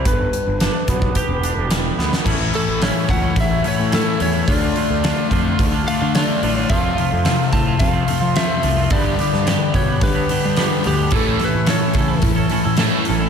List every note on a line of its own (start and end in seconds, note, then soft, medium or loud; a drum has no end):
0.05 0.27 G1 loud
0.05 1.44 G2 medium
0.05 1.68 B4 medium
0.05 kick loud
0.05 closed hi-hat medium
0.33 closed hi-hat medium
0.47 0.69 G1 medium
0.60 1.43 D4 medium
0.60 snare loud
0.60 closed hi-hat medium
0.88 1.10 B1 medium
0.88 1.97 B3 medium
0.88 kick medium
0.88 closed hi-hat medium
1.02 kick loud
1.15 2.27 G4 medium
1.15 kick loud
1.15 closed hi-hat medium
1.28 1.51 E1 medium
1.44 2.27 D4 medium
1.44 closed hi-hat medium
1.57 1.90 E1 loud
1.71 2.26 G3 medium
1.71 snare loud
1.71 closed hi-hat medium
1.98 2.09 D2 medium
1.98 2.26 B3 medium
1.98 snare medium
2.13 snare medium
2.25 2.48 A1 loud
2.25 2.67 A2 medium
2.25 2.53 E3 medium
2.25 2.43 A3 medium
2.25 2.40 C#4 loud
2.25 2.39 E4 loud
2.25 kick loud
2.25 crash loud
2.40 2.55 A3 medium
2.40 2.54 C#4 medium
2.40 2.55 E4 medium
2.54 2.79 A2 medium
2.54 2.81 E3 medium
2.54 2.82 A3 medium
2.54 2.82 C#4 medium
2.54 2.83 E4 medium
2.54 2.83 A4 medium
2.54 open hi-hat soft
2.68 2.90 A1 medium
2.82 3.37 A2 medium
2.82 3.08 E3 medium
2.82 3.10 A3 medium
2.82 3.10 C#4 loud
2.82 3.10 E4 medium
2.82 3.11 C#5 medium
2.82 snare loud
2.82 open hi-hat medium
3.09 3.31 C#2 medium
3.09 3.34 A2 medium
3.09 3.51 E3 medium
3.09 3.24 A3 medium
3.09 3.22 C#4 medium
3.09 3.21 E4 medium
3.09 3.38 F#5 loud
3.09 kick medium
3.09 open hi-hat medium
3.22 3.51 A3 medium
3.22 3.49 C#4 medium
3.22 3.47 E4 medium
3.36 3.58 A1 loud
3.36 3.62 A2 medium
3.36 3.62 E3 medium
3.36 kick loud
3.36 open hi-hat medium
3.41 3.65 E5 medium
3.49 3.63 A3 medium
3.49 3.63 C#4 medium
3.49 3.64 E4 medium
3.62 3.90 A2 medium
3.62 3.90 E3 medium
3.62 3.78 A3 medium
3.62 3.77 C#4 medium
3.62 3.75 E4 medium
3.62 open hi-hat medium
3.68 3.92 C#5 medium
3.76 4.01 A2 medium
3.76 3.91 A3 medium
3.76 3.91 C#4 medium
3.76 3.92 E4 medium
3.91 4.45 A2 loud
3.91 4.17 E3 loud
3.91 4.18 A3 loud
3.91 4.18 C#4 medium
3.91 4.20 E4 loud
3.91 4.19 A4 medium
3.91 snare loud
3.91 open hi-hat medium
4.18 4.42 E2 medium
4.18 4.45 A2 medium
4.18 4.45 E3 medium
4.18 4.34 A3 medium
4.18 4.33 C#4 medium
4.18 4.31 E4 medium
4.18 open hi-hat medium
4.22 4.47 C#5 medium
4.32 4.48 A3 medium
4.32 4.46 C#4 medium
4.32 4.45 E4 medium
4.47 4.70 D2 medium
4.47 4.74 D3 medium
4.47 4.64 A3 medium
4.47 4.62 D4 loud
4.47 4.61 F4 loud
4.47 5.27 D5 medium
4.47 kick loud
4.47 open hi-hat medium
4.62 4.75 A3 medium
4.62 4.75 D4 medium
4.62 4.77 F4 medium
4.75 5.02 D3 medium
4.75 5.04 A3 medium
4.75 5.04 D4 medium
4.75 5.05 F4 medium
4.75 open hi-hat medium
4.90 5.12 D2 medium
5.03 5.29 D3 loud
5.03 5.31 A3 medium
5.03 5.31 D4 medium
5.03 5.32 F4 loud
5.03 snare loud
5.03 open hi-hat medium
5.30 5.53 F2 medium
5.30 5.72 D3 medium
5.30 5.46 A3 medium
5.30 5.45 D4 medium
5.30 5.43 F4 medium
5.30 kick medium
5.30 open hi-hat medium
5.44 5.74 A3 medium
5.44 5.73 D4 medium
5.44 5.71 F4 medium
5.59 5.81 D2 medium
5.59 5.84 D3 medium
5.59 5.85 A3 medium
5.59 kick loud
5.59 open hi-hat medium
5.72 5.87 A3 medium
5.72 5.88 D4 medium
5.72 5.89 F4 medium
5.87 6.13 D3 medium
5.87 6.02 A3 medium
5.87 6.01 D4 medium
5.87 6.00 F4 medium
5.87 6.14 F5 medium
5.87 open hi-hat medium
6.01 6.23 D3 medium
6.01 6.14 A3 medium
6.01 6.16 D4 medium
6.01 6.16 F4 medium
6.15 6.41 D3 medium
6.15 6.41 A3 medium
6.15 6.42 D4 loud
6.15 6.43 F4 loud
6.15 6.56 D5 medium
6.15 snare loud
6.15 open hi-hat medium
6.42 6.64 A1 medium
6.42 6.68 D3 medium
6.42 6.57 A3 medium
6.42 6.56 D4 medium
6.42 6.55 F4 medium
6.42 open hi-hat medium
6.56 6.69 A3 medium
6.56 6.69 D4 medium
6.56 6.68 F4 medium
6.56 6.70 C#5 medium
6.69 7.11 F2 medium
6.69 6.92 F2 medium
6.69 7.11 C3 loud
6.69 6.84 F3 loud
6.69 6.84 A3 loud
6.69 6.83 C4 loud
6.69 6.82 F4 loud
6.69 7.49 F5 loud
6.69 kick loud
6.69 open hi-hat medium
6.83 6.96 F3 medium
6.83 6.97 A3 medium
6.83 6.98 C4 medium
6.83 6.99 F4 medium
6.96 7.22 F2 medium
6.96 7.22 C3 medium
6.96 7.24 F3 medium
6.96 7.24 A3 medium
6.96 7.24 C4 medium
6.96 7.25 F4 medium
6.96 open hi-hat soft
7.13 7.34 F2 medium
7.24 7.80 F2 loud
7.24 7.80 C3 loud
7.24 7.51 F3 medium
7.24 7.51 A3 loud
7.24 7.52 C4 loud
7.24 7.53 F4 loud
7.24 snare loud
7.24 open hi-hat medium
7.52 7.78 F2 medium
7.52 7.75 A2 medium
7.52 7.78 C3 medium
7.52 7.67 F3 medium
7.52 7.67 A3 medium
7.52 7.66 C4 medium
7.52 7.65 F4 medium
7.52 7.81 A5 loud
7.52 kick medium
7.52 open hi-hat medium
7.66 7.94 F3 medium
7.66 7.93 A3 medium
7.66 7.92 C4 medium
7.66 7.91 F4 medium
7.79 8.02 F2 loud
7.79 8.06 F2 medium
7.79 8.06 C3 medium
7.79 8.36 F5 loud
7.79 kick loud
7.79 open hi-hat medium
7.93 8.05 F3 medium
7.93 8.06 A3 medium
7.93 8.07 C4 medium
7.93 8.07 F4 medium
8.06 8.21 F3 medium
8.06 8.20 A3 medium
8.06 8.20 C4 medium
8.06 8.19 F4 medium
8.06 open hi-hat medium
8.10 8.34 F2 medium
8.10 8.34 C3 medium
8.20 8.43 F3 medium
8.20 8.35 F3 medium
8.20 8.35 A3 medium
8.20 8.36 C4 medium
8.20 8.36 F4 medium
8.35 8.89 F2 medium
8.35 8.89 C3 medium
8.35 8.61 F3 loud
8.35 8.62 A3 loud
8.35 8.63 C4 loud
8.35 8.63 F4 medium
8.35 8.91 E5 loud
8.35 snare loud
8.35 open hi-hat medium
8.62 8.85 C2 medium
8.62 8.89 F2 medium
8.62 8.90 C3 medium
8.62 8.78 F3 medium
8.62 8.77 A3 medium
8.62 8.76 C4 medium
8.62 8.75 F4 medium
8.62 open hi-hat medium
8.77 8.90 F3 medium
8.77 8.90 A3 medium
8.77 8.90 C4 medium
8.77 8.89 F4 medium
8.90 9.33 G2 medium
8.90 9.13 G2 loud
8.90 9.33 D3 medium
8.90 9.05 G3 medium
8.90 9.05 B3 medium
8.90 9.04 D4 medium
8.90 9.03 G4 loud
8.90 9.75 D5 loud
8.90 kick loud
8.90 open hi-hat medium
9.04 9.17 G3 medium
9.04 9.18 B3 medium
9.04 9.19 D4 medium
9.04 9.19 G4 medium
9.18 9.44 G2 medium
9.18 9.44 D3 medium
9.18 9.46 G3 medium
9.18 9.46 B3 medium
9.18 9.46 D4 medium
9.18 9.47 G4 medium
9.18 snare soft
9.18 open hi-hat medium
9.33 9.55 G2 medium
9.33 snare soft
9.46 10.02 G2 medium
9.46 10.02 D3 loud
9.46 9.72 G3 loud
9.46 9.73 B3 medium
9.46 9.74 D4 medium
9.46 9.74 G4 loud
9.46 snare loud
9.46 open hi-hat medium
9.73 10.00 G2 medium
9.73 9.96 B2 medium
9.73 10.00 D3 medium
9.73 9.88 G3 medium
9.73 9.87 B3 medium
9.73 9.86 D4 medium
9.73 9.85 G4 medium
9.73 10.03 C#5 medium
9.73 kick medium
9.73 open hi-hat medium
9.86 10.16 G3 medium
9.86 10.16 B3 medium
9.86 10.14 D4 medium
9.86 10.13 G4 medium
10.01 10.23 G2 loud
10.01 10.27 G2 medium
10.01 10.28 D3 medium
10.01 10.87 B4 medium
10.01 kick loud
10.01 open hi-hat medium
10.15 10.27 G3 medium
10.15 10.28 B3 medium
10.15 10.29 D4 medium
10.15 10.30 G4 medium
10.28 10.55 G2 medium
10.28 10.55 D3 medium
10.28 10.45 G3 medium
10.28 10.44 B3 medium
10.28 10.43 D4 medium
10.28 10.42 G4 medium
10.28 open hi-hat medium
10.43 10.66 G3 medium
10.43 10.57 G3 medium
10.43 10.57 B3 medium
10.43 10.58 D4 medium
10.43 10.58 G4 medium
10.56 11.11 G2 medium
10.56 11.10 D3 loud
10.56 10.83 G3 loud
10.56 10.84 B3 loud
10.56 10.84 D4 loud
10.56 10.85 G4 loud
10.56 snare loud
10.56 open hi-hat medium
10.84 11.07 D2 medium
10.84 11.10 G2 medium
10.84 11.11 D3 medium
10.84 10.99 G3 medium
10.84 10.98 B3 medium
10.84 10.97 D4 medium
10.84 10.96 G4 medium
10.84 11.15 G4 medium
10.84 open hi-hat medium
10.97 11.11 G3 medium
10.97 11.11 B3 medium
10.97 11.11 D4 medium
10.97 11.10 G4 medium
11.11 11.53 A2 medium
11.11 11.34 A2 loud
11.11 11.39 A2 medium
11.11 11.39 E3 medium
11.11 11.38 A3 medium
11.11 11.39 A3 medium
11.11 11.26 C#4 loud
11.11 11.24 E4 loud
11.11 11.24 A4 loud
11.11 kick loud
11.11 open hi-hat medium
11.16 11.43 A4 medium
11.24 11.37 C#4 medium
11.24 11.39 E4 medium
11.24 11.40 A4 medium
11.38 11.66 A2 medium
11.38 11.66 E3 medium
11.38 11.66 A3 medium
11.38 11.66 C#4 medium
11.38 11.66 E4 medium
11.38 11.68 A4 medium
11.38 snare soft
11.38 open hi-hat medium
11.44 11.70 B4 medium
11.55 11.76 A2 medium
11.66 12.22 A2 loud
11.66 11.93 A2 medium
11.66 11.94 E3 medium
11.66 11.94 A3 loud
11.66 11.94 C#4 loud
11.66 11.95 E4 loud
11.66 11.96 A4 loud
11.66 snare loud
11.66 open hi-hat medium
11.70 12.21 C#5 medium
11.94 12.21 A2 medium
11.94 12.17 C#3 medium
11.94 12.21 E3 medium
11.94 12.50 A3 medium
11.94 12.09 C#4 medium
11.94 12.08 E4 medium
11.94 12.08 A4 medium
11.94 kick medium
11.94 open hi-hat medium
12.08 12.38 C#4 medium
12.08 12.36 E4 medium
12.08 12.36 A4 medium
12.22 12.45 A2 medium
12.22 12.49 A2 medium
12.22 12.49 E3 medium
12.22 kick loud
12.22 open hi-hat medium
12.36 12.50 C#4 medium
12.36 12.51 E4 medium
12.36 12.53 A4 medium
12.50 12.76 A2 medium
12.50 12.76 E3 medium
12.50 12.79 A3 medium
12.50 12.65 C#4 medium
12.50 12.64 E4 medium
12.50 12.64 A4 medium
12.50 open hi-hat medium
12.64 12.87 A2 medium
12.64 12.78 C#4 medium
12.64 12.79 E4 medium
12.64 12.80 A4 medium
12.77 13.04 A2 medium
12.77 13.29 A2 loud
12.77 13.05 E3 loud
12.77 13.05 A3 medium
12.77 13.06 C#4 loud
12.77 13.07 E4 loud
12.77 13.08 A4 loud
12.77 snare loud
12.77 open hi-hat medium
13.05 13.29 A2 medium
13.05 13.29 E3 medium
13.05 13.29 A3 medium
13.05 13.21 C#4 medium
13.05 13.20 E4 medium
13.05 13.19 A4 medium
13.05 open hi-hat medium
13.09 13.29 A1 loud
13.20 13.29 C#4 medium
13.20 13.29 E4 medium
13.20 13.29 A4 medium